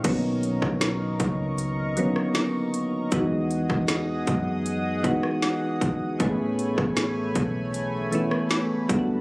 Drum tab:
CC |x---------------|----------------|----------------|
HH |x-x-x-x-x-x---x-|x-x-x-x-x-x---x-|x-x-x-x-x-x---x-|
SD |---ro------ro---|---ro------ro---|---ro------ro---|
BD |o--o--o---------|o--o--o---o---o-|o--o--o-------o-|